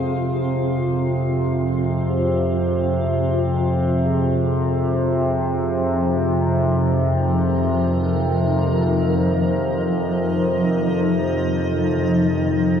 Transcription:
0, 0, Header, 1, 4, 480
1, 0, Start_track
1, 0, Key_signature, -4, "minor"
1, 0, Tempo, 500000
1, 12288, End_track
2, 0, Start_track
2, 0, Title_t, "Ambient pad"
2, 0, Program_c, 0, 92
2, 0, Note_on_c, 0, 60, 72
2, 0, Note_on_c, 0, 65, 59
2, 0, Note_on_c, 0, 68, 73
2, 0, Note_on_c, 0, 77, 65
2, 3896, Note_off_c, 0, 77, 0
2, 3897, Note_off_c, 0, 68, 0
2, 3899, Note_off_c, 0, 65, 0
2, 3909, Note_on_c, 0, 53, 86
2, 4822, Note_on_c, 0, 63, 74
2, 6063, Note_on_c, 0, 70, 68
2, 6232, Note_off_c, 0, 60, 0
2, 7200, Note_on_c, 0, 75, 73
2, 11651, Note_on_c, 0, 68, 69
2, 11949, Note_off_c, 0, 70, 0
2, 12288, Note_off_c, 0, 53, 0
2, 12288, Note_off_c, 0, 63, 0
2, 12288, Note_off_c, 0, 68, 0
2, 12288, Note_off_c, 0, 75, 0
2, 12288, End_track
3, 0, Start_track
3, 0, Title_t, "Singing bowl"
3, 0, Program_c, 1, 14
3, 0, Note_on_c, 1, 68, 49
3, 3883, Note_off_c, 1, 68, 0
3, 3895, Note_on_c, 1, 68, 48
3, 12288, Note_off_c, 1, 68, 0
3, 12288, End_track
4, 0, Start_track
4, 0, Title_t, "Synth drone"
4, 0, Program_c, 2, 95
4, 0, Note_on_c, 2, 41, 67
4, 0, Note_on_c, 2, 48, 59
4, 12288, Note_off_c, 2, 41, 0
4, 12288, Note_off_c, 2, 48, 0
4, 12288, End_track
0, 0, End_of_file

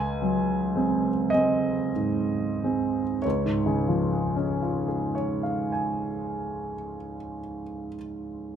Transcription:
0, 0, Header, 1, 2, 480
1, 0, Start_track
1, 0, Key_signature, -5, "major"
1, 0, Tempo, 1077199
1, 330, Tempo, 1204819
1, 810, Tempo, 1293103
1, 1290, Time_signature, 6, 3, 24, 8
1, 1290, Tempo, 1056338
1, 1770, Tempo, 1090909
1, 3647, End_track
2, 0, Start_track
2, 0, Title_t, "Grand piano"
2, 0, Program_c, 0, 0
2, 0, Control_c, 0, 64, 127
2, 0, Note_on_c, 0, 37, 44
2, 0, Note_on_c, 0, 80, 67
2, 97, Note_on_c, 0, 54, 34
2, 336, Note_on_c, 0, 56, 30
2, 336, Note_on_c, 0, 60, 34
2, 470, Note_off_c, 0, 54, 0
2, 547, Note_off_c, 0, 56, 0
2, 547, Note_off_c, 0, 60, 0
2, 554, Note_on_c, 0, 75, 53
2, 557, Note_off_c, 0, 80, 0
2, 569, Note_on_c, 0, 56, 31
2, 570, Note_on_c, 0, 60, 34
2, 799, Note_off_c, 0, 56, 0
2, 799, Note_off_c, 0, 60, 0
2, 815, Note_on_c, 0, 44, 26
2, 1068, Note_on_c, 0, 56, 26
2, 1069, Note_on_c, 0, 60, 27
2, 1211, Note_off_c, 0, 44, 0
2, 1267, Note_off_c, 0, 37, 0
2, 1277, Note_off_c, 0, 56, 0
2, 1278, Note_off_c, 0, 60, 0
2, 1284, Note_on_c, 0, 73, 40
2, 1287, Note_off_c, 0, 75, 0
2, 1296, Note_on_c, 0, 37, 35
2, 1301, Control_c, 0, 64, 0
2, 1384, Control_c, 0, 64, 127
2, 1389, Note_on_c, 0, 44, 34
2, 1482, Note_on_c, 0, 49, 35
2, 1582, Note_on_c, 0, 53, 32
2, 1692, Note_on_c, 0, 56, 33
2, 1801, Note_on_c, 0, 61, 30
2, 1913, Note_on_c, 0, 65, 26
2, 2027, Note_on_c, 0, 68, 29
2, 2139, Note_off_c, 0, 73, 0
2, 2146, Note_on_c, 0, 73, 30
2, 2270, Note_on_c, 0, 77, 24
2, 2399, Note_on_c, 0, 80, 26
2, 2848, Note_off_c, 0, 37, 0
2, 2938, Note_off_c, 0, 44, 0
2, 3028, Note_off_c, 0, 49, 0
2, 3125, Note_off_c, 0, 53, 0
2, 3232, Note_off_c, 0, 56, 0
2, 3337, Note_off_c, 0, 61, 0
2, 3380, Note_off_c, 0, 73, 0
2, 3380, Note_off_c, 0, 77, 0
2, 3380, Note_off_c, 0, 80, 0
2, 3381, Note_off_c, 0, 68, 0
2, 3382, Note_off_c, 0, 65, 0
2, 3647, End_track
0, 0, End_of_file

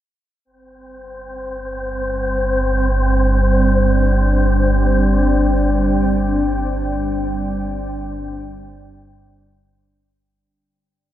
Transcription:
0, 0, Header, 1, 4, 480
1, 0, Start_track
1, 0, Tempo, 500000
1, 10685, End_track
2, 0, Start_track
2, 0, Title_t, "Ambient pad"
2, 0, Program_c, 0, 92
2, 472, Note_on_c, 0, 55, 62
2, 1585, Note_on_c, 0, 74, 63
2, 1948, Note_on_c, 0, 62, 71
2, 3101, Note_on_c, 0, 79, 63
2, 9858, Note_off_c, 0, 79, 0
2, 9861, Note_off_c, 0, 62, 0
2, 9863, Note_off_c, 0, 74, 0
2, 9873, Note_off_c, 0, 55, 0
2, 10685, End_track
3, 0, Start_track
3, 0, Title_t, "Synth texture"
3, 0, Program_c, 1, 99
3, 431, Note_on_c, 1, 60, 82
3, 433, Note_on_c, 1, 72, 72
3, 9876, Note_off_c, 1, 60, 0
3, 9876, Note_off_c, 1, 72, 0
3, 10685, End_track
4, 0, Start_track
4, 0, Title_t, "Synth drone"
4, 0, Program_c, 2, 95
4, 438, Note_on_c, 2, 31, 70
4, 441, Note_on_c, 2, 43, 61
4, 9973, Note_off_c, 2, 31, 0
4, 9975, Note_off_c, 2, 43, 0
4, 10685, End_track
0, 0, End_of_file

